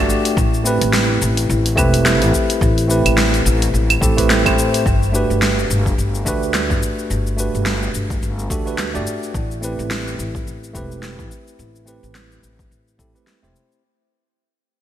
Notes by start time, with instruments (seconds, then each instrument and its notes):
Already playing: tine electric piano A3 D4 F#4 G4
0.00 tine electric piano D5
0.10 shaker
0.25 open hi-hat, shaker
0.37 upright bass A1, kick, shaker
0.54 shaker
0.64 tine electric piano A3 C4 E4 G4 B4, shaker
0.81 upright bass A1, open hi-hat, shaker
0.93 snare, shaker
1.21 upright bass A1, shaker
1.37 open hi-hat, shaker
1.50 upright bass A1, shaker
1.66 open hi-hat, shaker
1.75 upright bass E1, tine electric piano A3 C4 E4 G4 B4, kick, claves, shaker
1.94 open hi-hat, shaker
2.06 snare, shaker
2.21 upright bass A1, open hi-hat, shaker
2.33 kick, shaker
2.50 open hi-hat, shaker
2.61 upright bass A1, kick, shaker
2.78 open hi-hat, shaker
2.87 tine electric piano A3 C4 E4 G4 B4, shaker
3.06 upright bass A1, open hi-hat, claves, shaker
3.18 snare, shaker
3.34 open hi-hat, shaker
3.45 upright bass A1, shaker
3.62 open hi-hat, shaker
3.74 upright bass A1, shaker
3.90 open hi-hat, claves, shaker
4.01 upright bass A1, tine electric piano A3 C4 E4 G4 A4, kick, shaker
4.17 tine electric piano A3 C4 E4 G4 B4, kick, open hi-hat, shaker
4.30 snare, shaker
4.45 upright bass A2, tine electric piano A3 C4 E4 G4 C5, kick, open hi-hat, claves, shaker
4.59 shaker
4.74 open hi-hat, shaker
4.86 upright bass G1, kick, shaker
5.03 shaker
5.12 tine electric piano A3 D4 F#4 G4 B4, shaker
5.30 upright bass G1, shaker
5.42 snare, shaker
5.59 shaker
5.70 upright bass G1, shaker
5.86 kick, shaker
5.98 upright bass G1, shaker
6.15 shaker
6.25 upright bass D2, tine electric piano A3 D4 F#4 G4 B4, kick, shaker
6.43 shaker
6.54 snare, shaker
6.70 upright bass G1, kick, shaker
6.83 shaker
6.99 shaker
7.10 upright bass G1, shaker
7.27 shaker
7.36 tine electric piano A3 D4 F#4 G4 B4, shaker
7.55 upright bass G1, shaker
7.66 snare, shaker
7.83 shaker
7.94 upright bass G1, shaker
8.10 kick, shaker
8.23 upright bass G1, shaker
8.39 shaker
8.49 upright bass D2, tine electric piano A3 D4 F#4 G4 A4, kick, shaker
8.66 tine electric piano A3 D4 F#4 G4 B4, shaker
8.78 snare, shaker
8.94 upright bass G1, tine electric piano A3 D4 F#4 G4 D5, shaker
9.07 shaker
9.23 shaker
9.34 upright bass A1, kick, shaker
9.51 shaker
9.61 tine electric piano A3 C4 E4 G4 B4, shaker
9.79 upright bass A1, shaker
9.91 snare, shaker
10.07 shaker
10.19 upright bass A1, shaker
10.35 kick, shaker
10.47 upright bass A1, shaker
10.64 shaker
10.73 upright bass E1, tine electric piano A3 C4 E4 G4 B4, kick, shaker
10.92 shaker
11.03 snare, shaker
11.19 upright bass A1, kick, shaker
11.31 shaker
11.47 shaker
11.59 upright bass A1, shaker
11.76 shaker
11.85 tine electric piano A3 C4 E4 G4 B4, shaker
12.03 upright bass A1, shaker
12.15 snare, shaker
12.32 shaker
12.43 upright bass A1, shaker
12.59 kick, shaker
12.71 upright bass A1, shaker
12.88 shaker
12.98 upright bass A2, tine electric piano A3 C4 E4 G4 A4, kick, shaker
13.14 tine electric piano A3 C4 E4 G4 B4, shaker
13.27 snare, shaker
13.42 upright bass E1, tine electric piano A3 C4 E4 G4 C5, shaker
13.56 shaker
13.72 shaker